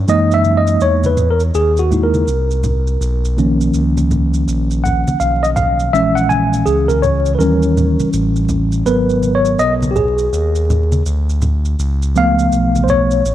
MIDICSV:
0, 0, Header, 1, 4, 480
1, 0, Start_track
1, 0, Key_signature, 6, "major"
1, 0, Tempo, 731707
1, 54, Time_signature, 4, 2, 24, 8
1, 8756, End_track
2, 0, Start_track
2, 0, Title_t, "Tine electric piano"
2, 0, Program_c, 0, 4
2, 51, Note_on_c, 0, 52, 53
2, 52, Note_on_c, 0, 56, 52
2, 56, Note_on_c, 0, 58, 51
2, 59, Note_on_c, 0, 63, 58
2, 62, Note_on_c, 0, 75, 100
2, 222, Note_on_c, 0, 76, 96
2, 223, Note_off_c, 0, 75, 0
2, 376, Note_on_c, 0, 75, 96
2, 383, Note_off_c, 0, 76, 0
2, 538, Note_on_c, 0, 73, 98
2, 540, Note_off_c, 0, 75, 0
2, 697, Note_on_c, 0, 71, 82
2, 701, Note_off_c, 0, 73, 0
2, 746, Note_off_c, 0, 52, 0
2, 747, Note_off_c, 0, 56, 0
2, 749, Note_off_c, 0, 58, 0
2, 750, Note_off_c, 0, 63, 0
2, 857, Note_on_c, 0, 70, 85
2, 860, Note_off_c, 0, 71, 0
2, 928, Note_off_c, 0, 70, 0
2, 1017, Note_on_c, 0, 68, 91
2, 1176, Note_on_c, 0, 66, 80
2, 1180, Note_off_c, 0, 68, 0
2, 1252, Note_on_c, 0, 64, 49
2, 1254, Note_on_c, 0, 56, 46
2, 1256, Note_on_c, 0, 58, 45
2, 1256, Note_on_c, 0, 63, 52
2, 1334, Note_on_c, 0, 70, 76
2, 1340, Note_off_c, 0, 66, 0
2, 1469, Note_off_c, 0, 64, 0
2, 1470, Note_off_c, 0, 56, 0
2, 1471, Note_off_c, 0, 58, 0
2, 1471, Note_off_c, 0, 63, 0
2, 2212, Note_on_c, 0, 51, 53
2, 2215, Note_on_c, 0, 53, 50
2, 2218, Note_on_c, 0, 58, 50
2, 2220, Note_on_c, 0, 61, 61
2, 2508, Note_off_c, 0, 70, 0
2, 3173, Note_on_c, 0, 78, 84
2, 3397, Note_off_c, 0, 78, 0
2, 3411, Note_on_c, 0, 77, 87
2, 3561, Note_on_c, 0, 75, 91
2, 3567, Note_off_c, 0, 77, 0
2, 3603, Note_off_c, 0, 75, 0
2, 3648, Note_on_c, 0, 77, 96
2, 3867, Note_off_c, 0, 51, 0
2, 3868, Note_off_c, 0, 53, 0
2, 3870, Note_off_c, 0, 58, 0
2, 3871, Note_off_c, 0, 61, 0
2, 3892, Note_on_c, 0, 52, 56
2, 3892, Note_on_c, 0, 76, 104
2, 3896, Note_on_c, 0, 56, 49
2, 3898, Note_off_c, 0, 77, 0
2, 3900, Note_on_c, 0, 61, 61
2, 4036, Note_on_c, 0, 78, 99
2, 4048, Note_off_c, 0, 76, 0
2, 4128, Note_on_c, 0, 80, 99
2, 4133, Note_off_c, 0, 78, 0
2, 4367, Note_on_c, 0, 68, 87
2, 4379, Note_off_c, 0, 80, 0
2, 4510, Note_off_c, 0, 68, 0
2, 4515, Note_on_c, 0, 70, 82
2, 4607, Note_on_c, 0, 73, 86
2, 4612, Note_off_c, 0, 70, 0
2, 4802, Note_off_c, 0, 73, 0
2, 4820, Note_on_c, 0, 71, 57
2, 4827, Note_off_c, 0, 52, 0
2, 4829, Note_off_c, 0, 56, 0
2, 4831, Note_off_c, 0, 61, 0
2, 4846, Note_on_c, 0, 52, 59
2, 4847, Note_on_c, 0, 70, 81
2, 4853, Note_on_c, 0, 55, 53
2, 4855, Note_off_c, 0, 71, 0
2, 4855, Note_on_c, 0, 61, 64
2, 5304, Note_off_c, 0, 70, 0
2, 5784, Note_off_c, 0, 52, 0
2, 5787, Note_off_c, 0, 55, 0
2, 5788, Note_off_c, 0, 61, 0
2, 5809, Note_on_c, 0, 54, 54
2, 5813, Note_on_c, 0, 70, 49
2, 5813, Note_on_c, 0, 71, 96
2, 5816, Note_on_c, 0, 59, 62
2, 6133, Note_on_c, 0, 73, 97
2, 6143, Note_off_c, 0, 71, 0
2, 6293, Note_on_c, 0, 75, 108
2, 6299, Note_off_c, 0, 73, 0
2, 6386, Note_off_c, 0, 75, 0
2, 6501, Note_on_c, 0, 67, 59
2, 6505, Note_off_c, 0, 54, 0
2, 6508, Note_off_c, 0, 70, 0
2, 6509, Note_off_c, 0, 59, 0
2, 6533, Note_on_c, 0, 68, 85
2, 6535, Note_off_c, 0, 67, 0
2, 7227, Note_off_c, 0, 68, 0
2, 7973, Note_on_c, 0, 53, 56
2, 7978, Note_on_c, 0, 57, 51
2, 7981, Note_on_c, 0, 59, 64
2, 7987, Note_on_c, 0, 77, 114
2, 8421, Note_on_c, 0, 72, 69
2, 8440, Note_off_c, 0, 77, 0
2, 8455, Note_off_c, 0, 72, 0
2, 8461, Note_on_c, 0, 73, 94
2, 8668, Note_off_c, 0, 53, 0
2, 8670, Note_off_c, 0, 57, 0
2, 8672, Note_off_c, 0, 59, 0
2, 8756, Note_off_c, 0, 73, 0
2, 8756, End_track
3, 0, Start_track
3, 0, Title_t, "Analog synth bass"
3, 0, Program_c, 1, 38
3, 52, Note_on_c, 1, 42, 100
3, 509, Note_off_c, 1, 42, 0
3, 533, Note_on_c, 1, 40, 91
3, 990, Note_off_c, 1, 40, 0
3, 1014, Note_on_c, 1, 39, 97
3, 1470, Note_off_c, 1, 39, 0
3, 1493, Note_on_c, 1, 36, 85
3, 1949, Note_off_c, 1, 36, 0
3, 1974, Note_on_c, 1, 35, 109
3, 2430, Note_off_c, 1, 35, 0
3, 2455, Note_on_c, 1, 37, 100
3, 2911, Note_off_c, 1, 37, 0
3, 2935, Note_on_c, 1, 34, 97
3, 3306, Note_off_c, 1, 34, 0
3, 3324, Note_on_c, 1, 35, 47
3, 3360, Note_off_c, 1, 35, 0
3, 3413, Note_on_c, 1, 35, 103
3, 3870, Note_off_c, 1, 35, 0
3, 3894, Note_on_c, 1, 34, 102
3, 4350, Note_off_c, 1, 34, 0
3, 4374, Note_on_c, 1, 37, 91
3, 4830, Note_off_c, 1, 37, 0
3, 4854, Note_on_c, 1, 39, 104
3, 5225, Note_off_c, 1, 39, 0
3, 5246, Note_on_c, 1, 33, 49
3, 5282, Note_off_c, 1, 33, 0
3, 5336, Note_on_c, 1, 33, 100
3, 5791, Note_off_c, 1, 33, 0
3, 5816, Note_on_c, 1, 32, 95
3, 6271, Note_off_c, 1, 32, 0
3, 6293, Note_on_c, 1, 35, 96
3, 6750, Note_off_c, 1, 35, 0
3, 6773, Note_on_c, 1, 39, 102
3, 7230, Note_off_c, 1, 39, 0
3, 7255, Note_on_c, 1, 38, 88
3, 7711, Note_off_c, 1, 38, 0
3, 7736, Note_on_c, 1, 37, 106
3, 8191, Note_off_c, 1, 37, 0
3, 8215, Note_on_c, 1, 35, 93
3, 8670, Note_off_c, 1, 35, 0
3, 8693, Note_on_c, 1, 33, 102
3, 8756, Note_off_c, 1, 33, 0
3, 8756, End_track
4, 0, Start_track
4, 0, Title_t, "Drums"
4, 53, Note_on_c, 9, 82, 65
4, 119, Note_off_c, 9, 82, 0
4, 206, Note_on_c, 9, 82, 40
4, 272, Note_off_c, 9, 82, 0
4, 290, Note_on_c, 9, 63, 42
4, 290, Note_on_c, 9, 82, 41
4, 356, Note_off_c, 9, 63, 0
4, 356, Note_off_c, 9, 82, 0
4, 440, Note_on_c, 9, 82, 51
4, 506, Note_off_c, 9, 82, 0
4, 528, Note_on_c, 9, 82, 63
4, 594, Note_off_c, 9, 82, 0
4, 680, Note_on_c, 9, 63, 64
4, 680, Note_on_c, 9, 82, 46
4, 745, Note_off_c, 9, 63, 0
4, 745, Note_off_c, 9, 82, 0
4, 769, Note_on_c, 9, 64, 57
4, 769, Note_on_c, 9, 82, 42
4, 835, Note_off_c, 9, 64, 0
4, 835, Note_off_c, 9, 82, 0
4, 918, Note_on_c, 9, 82, 42
4, 983, Note_off_c, 9, 82, 0
4, 1014, Note_on_c, 9, 82, 63
4, 1079, Note_off_c, 9, 82, 0
4, 1160, Note_on_c, 9, 82, 41
4, 1226, Note_off_c, 9, 82, 0
4, 1257, Note_on_c, 9, 64, 63
4, 1257, Note_on_c, 9, 82, 45
4, 1323, Note_off_c, 9, 64, 0
4, 1323, Note_off_c, 9, 82, 0
4, 1403, Note_on_c, 9, 63, 67
4, 1403, Note_on_c, 9, 82, 51
4, 1469, Note_off_c, 9, 63, 0
4, 1469, Note_off_c, 9, 82, 0
4, 1494, Note_on_c, 9, 82, 68
4, 1559, Note_off_c, 9, 82, 0
4, 1645, Note_on_c, 9, 82, 43
4, 1710, Note_off_c, 9, 82, 0
4, 1729, Note_on_c, 9, 64, 65
4, 1729, Note_on_c, 9, 82, 50
4, 1795, Note_off_c, 9, 64, 0
4, 1795, Note_off_c, 9, 82, 0
4, 1883, Note_on_c, 9, 82, 38
4, 1949, Note_off_c, 9, 82, 0
4, 1979, Note_on_c, 9, 82, 63
4, 2045, Note_off_c, 9, 82, 0
4, 2131, Note_on_c, 9, 82, 40
4, 2197, Note_off_c, 9, 82, 0
4, 2219, Note_on_c, 9, 63, 41
4, 2219, Note_on_c, 9, 82, 41
4, 2285, Note_off_c, 9, 63, 0
4, 2285, Note_off_c, 9, 82, 0
4, 2366, Note_on_c, 9, 82, 52
4, 2432, Note_off_c, 9, 82, 0
4, 2452, Note_on_c, 9, 82, 60
4, 2518, Note_off_c, 9, 82, 0
4, 2606, Note_on_c, 9, 63, 66
4, 2606, Note_on_c, 9, 82, 45
4, 2672, Note_off_c, 9, 63, 0
4, 2672, Note_off_c, 9, 82, 0
4, 2695, Note_on_c, 9, 64, 60
4, 2695, Note_on_c, 9, 82, 44
4, 2761, Note_off_c, 9, 64, 0
4, 2761, Note_off_c, 9, 82, 0
4, 2845, Note_on_c, 9, 82, 43
4, 2911, Note_off_c, 9, 82, 0
4, 2940, Note_on_c, 9, 82, 66
4, 3006, Note_off_c, 9, 82, 0
4, 3088, Note_on_c, 9, 82, 40
4, 3153, Note_off_c, 9, 82, 0
4, 3184, Note_on_c, 9, 64, 60
4, 3184, Note_on_c, 9, 82, 44
4, 3250, Note_off_c, 9, 64, 0
4, 3250, Note_off_c, 9, 82, 0
4, 3330, Note_on_c, 9, 63, 70
4, 3330, Note_on_c, 9, 82, 50
4, 3395, Note_off_c, 9, 63, 0
4, 3395, Note_off_c, 9, 82, 0
4, 3414, Note_on_c, 9, 82, 65
4, 3480, Note_off_c, 9, 82, 0
4, 3570, Note_on_c, 9, 82, 45
4, 3635, Note_off_c, 9, 82, 0
4, 3651, Note_on_c, 9, 64, 68
4, 3651, Note_on_c, 9, 82, 49
4, 3716, Note_off_c, 9, 64, 0
4, 3716, Note_off_c, 9, 82, 0
4, 3802, Note_on_c, 9, 82, 39
4, 3868, Note_off_c, 9, 82, 0
4, 3903, Note_on_c, 9, 82, 65
4, 3968, Note_off_c, 9, 82, 0
4, 4049, Note_on_c, 9, 82, 41
4, 4114, Note_off_c, 9, 82, 0
4, 4134, Note_on_c, 9, 63, 41
4, 4134, Note_on_c, 9, 82, 40
4, 4199, Note_off_c, 9, 63, 0
4, 4199, Note_off_c, 9, 82, 0
4, 4286, Note_on_c, 9, 82, 53
4, 4351, Note_off_c, 9, 82, 0
4, 4372, Note_on_c, 9, 82, 64
4, 4437, Note_off_c, 9, 82, 0
4, 4523, Note_on_c, 9, 63, 64
4, 4523, Note_on_c, 9, 82, 46
4, 4588, Note_off_c, 9, 63, 0
4, 4588, Note_off_c, 9, 82, 0
4, 4613, Note_on_c, 9, 64, 60
4, 4613, Note_on_c, 9, 82, 43
4, 4679, Note_off_c, 9, 64, 0
4, 4679, Note_off_c, 9, 82, 0
4, 4760, Note_on_c, 9, 82, 48
4, 4826, Note_off_c, 9, 82, 0
4, 4857, Note_on_c, 9, 82, 69
4, 4922, Note_off_c, 9, 82, 0
4, 5001, Note_on_c, 9, 82, 42
4, 5067, Note_off_c, 9, 82, 0
4, 5099, Note_on_c, 9, 64, 61
4, 5099, Note_on_c, 9, 82, 45
4, 5165, Note_off_c, 9, 64, 0
4, 5165, Note_off_c, 9, 82, 0
4, 5246, Note_on_c, 9, 63, 66
4, 5246, Note_on_c, 9, 82, 50
4, 5311, Note_off_c, 9, 63, 0
4, 5311, Note_off_c, 9, 82, 0
4, 5334, Note_on_c, 9, 82, 69
4, 5400, Note_off_c, 9, 82, 0
4, 5484, Note_on_c, 9, 82, 45
4, 5549, Note_off_c, 9, 82, 0
4, 5568, Note_on_c, 9, 64, 66
4, 5568, Note_on_c, 9, 82, 51
4, 5634, Note_off_c, 9, 64, 0
4, 5634, Note_off_c, 9, 82, 0
4, 5720, Note_on_c, 9, 82, 39
4, 5786, Note_off_c, 9, 82, 0
4, 5814, Note_on_c, 9, 82, 65
4, 5880, Note_off_c, 9, 82, 0
4, 5966, Note_on_c, 9, 82, 41
4, 6031, Note_off_c, 9, 82, 0
4, 6053, Note_on_c, 9, 63, 43
4, 6053, Note_on_c, 9, 82, 44
4, 6118, Note_off_c, 9, 63, 0
4, 6118, Note_off_c, 9, 82, 0
4, 6200, Note_on_c, 9, 82, 52
4, 6266, Note_off_c, 9, 82, 0
4, 6290, Note_on_c, 9, 82, 60
4, 6356, Note_off_c, 9, 82, 0
4, 6445, Note_on_c, 9, 63, 67
4, 6445, Note_on_c, 9, 82, 49
4, 6510, Note_off_c, 9, 63, 0
4, 6510, Note_off_c, 9, 82, 0
4, 6533, Note_on_c, 9, 64, 59
4, 6533, Note_on_c, 9, 82, 43
4, 6598, Note_off_c, 9, 64, 0
4, 6598, Note_off_c, 9, 82, 0
4, 6680, Note_on_c, 9, 82, 44
4, 6745, Note_off_c, 9, 82, 0
4, 6779, Note_on_c, 9, 82, 66
4, 6844, Note_off_c, 9, 82, 0
4, 6923, Note_on_c, 9, 82, 42
4, 6988, Note_off_c, 9, 82, 0
4, 7020, Note_on_c, 9, 64, 65
4, 7020, Note_on_c, 9, 82, 45
4, 7085, Note_off_c, 9, 64, 0
4, 7085, Note_off_c, 9, 82, 0
4, 7164, Note_on_c, 9, 63, 72
4, 7164, Note_on_c, 9, 82, 50
4, 7229, Note_off_c, 9, 63, 0
4, 7229, Note_off_c, 9, 82, 0
4, 7255, Note_on_c, 9, 82, 73
4, 7320, Note_off_c, 9, 82, 0
4, 7409, Note_on_c, 9, 82, 45
4, 7474, Note_off_c, 9, 82, 0
4, 7489, Note_on_c, 9, 64, 72
4, 7489, Note_on_c, 9, 82, 46
4, 7555, Note_off_c, 9, 64, 0
4, 7555, Note_off_c, 9, 82, 0
4, 7643, Note_on_c, 9, 82, 38
4, 7709, Note_off_c, 9, 82, 0
4, 7737, Note_on_c, 9, 82, 70
4, 7803, Note_off_c, 9, 82, 0
4, 7888, Note_on_c, 9, 82, 41
4, 7954, Note_off_c, 9, 82, 0
4, 7976, Note_on_c, 9, 63, 45
4, 7976, Note_on_c, 9, 82, 42
4, 8042, Note_off_c, 9, 63, 0
4, 8042, Note_off_c, 9, 82, 0
4, 8127, Note_on_c, 9, 82, 51
4, 8193, Note_off_c, 9, 82, 0
4, 8215, Note_on_c, 9, 82, 63
4, 8280, Note_off_c, 9, 82, 0
4, 8367, Note_on_c, 9, 63, 67
4, 8367, Note_on_c, 9, 82, 49
4, 8432, Note_off_c, 9, 63, 0
4, 8432, Note_off_c, 9, 82, 0
4, 8450, Note_on_c, 9, 64, 60
4, 8450, Note_on_c, 9, 82, 43
4, 8516, Note_off_c, 9, 64, 0
4, 8516, Note_off_c, 9, 82, 0
4, 8599, Note_on_c, 9, 82, 47
4, 8665, Note_off_c, 9, 82, 0
4, 8695, Note_on_c, 9, 82, 70
4, 8756, Note_off_c, 9, 82, 0
4, 8756, End_track
0, 0, End_of_file